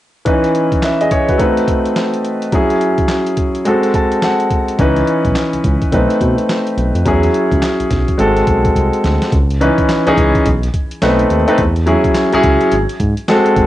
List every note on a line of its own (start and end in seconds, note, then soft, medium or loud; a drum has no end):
0.25 1.37 E3 medium
0.25 1.37 C#4 medium
0.25 1.37 D#4 medium
0.25 0.82 B4 medium
0.25 kick loud
0.25 closed hi-hat medium
0.44 closed hi-hat soft
0.55 closed hi-hat medium
0.72 kick medium
0.72 closed hi-hat soft
0.82 1.00 B4 medium
0.82 1.00 E5 medium
0.82 snare loud
0.82 clap medium
0.82 closed hi-hat medium
1.01 1.10 G#4 medium
1.01 1.11 D#5 medium
1.01 closed hi-hat medium
1.11 1.28 G#4 medium
1.11 1.28 C#5 medium
1.11 kick medium
1.11 closed hi-hat medium
1.29 1.56 F#4 medium
1.29 1.39 B4 medium
1.29 kick medium
1.29 closed hi-hat soft
1.38 2.49 A3 medium
1.38 2.50 C4 medium
1.38 2.50 D#4 medium
1.38 2.51 B4 medium
1.38 kick medium
1.38 closed hi-hat medium
1.57 closed hi-hat medium
1.68 kick medium
1.68 closed hi-hat medium
1.85 closed hi-hat medium
1.96 snare loud
1.96 clap medium
1.96 closed hi-hat medium
2.14 closed hi-hat soft
2.25 closed hi-hat medium
2.42 closed hi-hat medium
2.52 3.64 F#3 medium
2.52 3.64 C#4 medium
2.52 3.64 E4 medium
2.52 3.65 G#4 medium
2.52 kick loud
2.52 closed hi-hat medium
2.70 closed hi-hat soft
2.81 closed hi-hat medium
2.98 kick medium
2.98 closed hi-hat soft
3.08 snare loud
3.08 clap medium
3.08 closed hi-hat medium
3.27 closed hi-hat medium
3.37 kick medium
3.37 closed hi-hat medium
3.55 closed hi-hat soft
3.65 4.76 G#3 medium
3.65 4.77 C4 medium
3.65 4.77 F#4 medium
3.65 4.78 A4 medium
3.65 closed hi-hat medium
3.83 closed hi-hat medium
3.94 4.21 A5 medium
3.94 kick medium
3.94 closed hi-hat medium
4.12 closed hi-hat medium
4.22 4.76 F#5 medium
4.22 snare loud
4.22 clap medium
4.22 closed hi-hat medium
4.40 closed hi-hat soft
4.50 kick medium
4.50 closed hi-hat medium
4.68 closed hi-hat medium
4.79 5.02 C#2 loud
4.79 5.90 E3 medium
4.79 5.90 C#4 medium
4.79 5.91 D#4 medium
4.79 5.91 B4 medium
4.79 kick loud
4.79 closed hi-hat medium
4.96 closed hi-hat soft
5.07 closed hi-hat medium
5.25 5.34 B1 medium
5.25 kick medium
5.25 closed hi-hat soft
5.35 snare loud
5.35 clap medium
5.35 closed hi-hat medium
5.53 5.58 C#2 soft
5.53 closed hi-hat medium
5.64 5.79 C#2 medium
5.64 kick loud
5.64 closed hi-hat medium
5.82 kick medium
5.82 closed hi-hat soft
5.92 6.07 B1 loud
5.92 7.03 A3 medium
5.92 7.03 C4 medium
5.92 7.04 D#4 medium
5.92 7.04 B4 medium
5.92 kick medium
5.92 closed hi-hat medium
6.10 closed hi-hat medium
6.21 6.35 B2 medium
6.21 kick medium
6.21 closed hi-hat medium
6.38 closed hi-hat soft
6.49 snare loud
6.49 clap medium
6.49 closed hi-hat medium
6.67 closed hi-hat soft
6.77 6.92 B1 medium
6.77 closed hi-hat medium
6.95 7.03 F2 medium
6.95 closed hi-hat medium
7.05 7.29 E2 loud
7.05 8.16 F#3 medium
7.05 8.17 C#4 medium
7.05 8.17 E4 medium
7.05 8.18 G#4 medium
7.05 kick loud
7.05 closed hi-hat medium
7.23 closed hi-hat soft
7.34 closed hi-hat medium
7.52 7.60 C#2 medium
7.52 kick medium
7.52 closed hi-hat soft
7.62 snare loud
7.62 clap medium
7.62 closed hi-hat medium
7.80 7.84 B1 soft
7.80 closed hi-hat medium
7.91 8.05 B1 medium
7.91 kick medium
7.91 snare medium
7.91 closed hi-hat medium
8.08 kick medium
8.08 closed hi-hat soft
8.18 8.42 G#1 loud
8.18 9.29 G#3 medium
8.18 9.30 C4 medium
8.18 9.30 F#4 medium
8.18 9.30 A4 medium
8.18 closed hi-hat medium
8.37 closed hi-hat medium
8.47 8.71 B1 medium
8.47 kick medium
8.47 closed hi-hat medium
8.65 kick medium
8.65 closed hi-hat medium
8.76 8.90 C2 medium
8.76 kick medium
8.76 closed hi-hat medium
8.93 closed hi-hat soft
9.04 9.19 D2 loud
9.04 snare medium
9.04 closed hi-hat medium
9.22 snare medium
9.22 closed hi-hat medium
9.32 9.70 C#2 loud
9.32 kick loud
9.32 closed hi-hat medium
9.50 closed hi-hat soft
9.61 9.93 E3 medium
9.61 9.94 C#4 medium
9.61 9.94 D#4 medium
9.61 9.94 B4 medium
9.61 closed hi-hat medium
9.78 kick medium
9.78 closed hi-hat soft
9.89 snare loud
9.89 clap medium
9.89 closed hi-hat medium
10.07 10.11 C#2 soft
10.07 10.45 E3 medium
10.07 10.46 C#4 medium
10.07 10.46 D#4 medium
10.07 10.46 G#4 loud
10.07 closed hi-hat medium
10.17 10.32 C#2 medium
10.17 kick loud
10.17 closed hi-hat medium
10.35 kick medium
10.35 closed hi-hat soft
10.46 10.69 B1 loud
10.46 kick medium
10.46 closed hi-hat medium
10.63 closed hi-hat medium
10.74 kick medium
10.74 closed hi-hat medium
10.91 closed hi-hat medium
11.02 11.25 B1 medium
11.02 11.35 A3 medium
11.02 11.35 C4 medium
11.02 11.35 D#4 medium
11.02 11.35 B4 medium
11.02 snare loud
11.02 clap medium
11.02 closed hi-hat medium
11.19 closed hi-hat soft
11.30 11.45 D#2 loud
11.30 closed hi-hat medium
11.48 11.58 A3 medium
11.48 11.58 C4 medium
11.48 11.59 D#4 medium
11.48 11.59 B4 medium
11.48 closed hi-hat medium
11.58 11.96 E2 loud
11.58 kick loud
11.58 closed hi-hat medium
11.76 closed hi-hat soft
11.86 12.19 F#3 medium
11.86 12.20 C#4 medium
11.86 12.20 E4 medium
11.86 12.20 G#4 medium
11.86 closed hi-hat medium
12.04 kick medium
12.04 closed hi-hat soft
12.14 snare loud
12.14 clap loud
12.14 closed hi-hat medium
12.33 12.37 C#2 soft
12.33 12.72 F#3 medium
12.33 12.72 C#4 medium
12.33 12.72 E4 medium
12.33 12.72 G#4 loud
12.33 closed hi-hat medium
12.43 12.58 C#2 medium
12.43 kick medium
12.43 closed hi-hat medium
12.61 closed hi-hat soft
12.72 12.86 G#1 medium
12.72 closed hi-hat medium
12.89 closed hi-hat medium
13.00 13.14 G#2 loud
13.00 kick medium
13.00 closed hi-hat medium
13.17 closed hi-hat medium
13.28 13.61 G#3 medium
13.28 13.61 C4 medium
13.28 13.62 F#4 medium
13.28 13.62 A4 medium
13.28 snare loud
13.28 clap medium
13.28 closed hi-hat medium
13.46 closed hi-hat medium
13.56 13.67 G#1 medium
13.56 kick medium
13.56 closed hi-hat medium